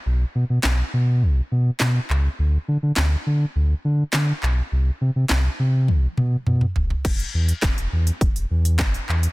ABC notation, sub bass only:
X:1
M:4/4
L:1/16
Q:1/4=103
K:Bphr
V:1 name="Sub bass" clef=bass
B,,,2 B,, B,, B,,,2 B,,2 B,,,2 B,,2 B,,2 ^C,,2 | D,,2 D, D, D,,2 D,2 D,,2 D,2 D,2 B,,,2 | C,,2 C, C, C,,2 C,2 B,,,2 B,,2 B,,2 ^D,,,2 | E,,,2 E,,2 E,,, E,,, E,,2 E,,, E,,, E,,2 E,,,2 E,,2 |]